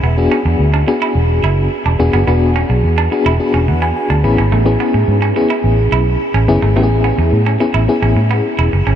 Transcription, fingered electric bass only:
\new Staff \with { instrumentName = "Fingered electric bass" } { \clef bass \time 4/4 \key a \major \tempo 4 = 107 e,,8 r16 e,16 d,8 r8 e,,8 fis,,8 r16 e,,16 e,,16 fis,,16 | e,,8. b,,16 e,8 r16 e,,16 r16 e,,16 e,8 r16 d,16 a,,16 gis,,16 | a,,8 r16 a,16 gis,8 r8 a,,8 b,,8 r16 a,,16 fis,,16 gis,,16 | a,,8. e,16 a,8 r16 a,,16 r16 a,,16 a,8 r16 e,,16 fis,,16 gis,,16 | }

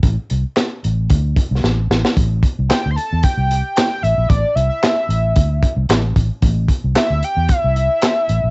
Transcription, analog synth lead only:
\new Staff \with { instrumentName = "Analog synth lead" } { \time 4/4 \key a \minor \tempo 4 = 113 r1 | r4 g''16. c'''32 a''8 g''4 g''8 e''8 | d''8 e''16 e''2 r4 r16 | r4 e''8 g''8 e''2 | }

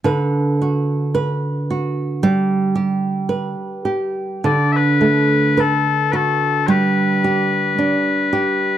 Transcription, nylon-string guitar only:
\new Staff \with { instrumentName = "Nylon-string guitar" } { \time 4/4 \key d \major \tempo 4 = 55 <d b'>8 fis'8 b'8 fis'8 g8 g'8 b'8 g'8 | d8 a8 b'8 fis'8 g8 g'8 d'8 g'8 | }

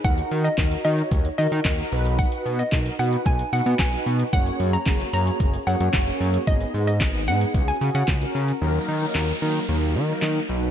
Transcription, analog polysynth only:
\new Staff \with { instrumentName = "Analog polysynth" } { \time 4/4 \key ees \minor \tempo 4 = 112 <ees' ges' bes'>8. r16 <ees' ges' bes'>8 <ees' ges' des''>8. r16 <ees' ges' bes'>8 r16 <ees' ges' bes'>16 <dis' fis' b'>8~ | <dis' fis' b'>8. r16 <dis' fis' bes'>8 <dis' fis' b'>8. r16 <dis' fis' b'>8 r16 <dis' fis' b'>8 r16 | <bes des' ges' aes' des''>8. r16 <bes des' ges' aes' des''>8 <bes des' ges' aes' des''>8. r16 <bes des' ges' aes' des''>8 r16 <bes des' ges' aes' des''>8 r16 | <ces' ees' aes'>8. r16 <ces' ees' aes'>8 <ces' ees' aes'>8 <des' ges' aes'>8 <des' ges' aes'>8 r16 <des' ges' bes'>8 r16 |
<ges bes ees' bes'>8 r16 <ges bes ees' bes'>8 r16 <ges bes ees' bes'>8 <ges bes ees' bes'>8 r16 <ges bes ees' bes'>8 r16 <fis b dis' b'>8 | }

